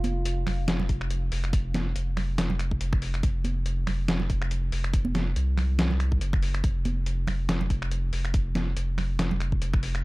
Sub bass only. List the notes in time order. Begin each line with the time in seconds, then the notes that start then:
Already playing: F1
0.47 F1
1.32 F1
1.96 F1
2.81 F1
3.23 F1
3.87 F1
4.72 F1
5.36 C2
6.21 F#1
6.64 F1
7.28 F1
8.13 F1
8.77 F1
9.62 F1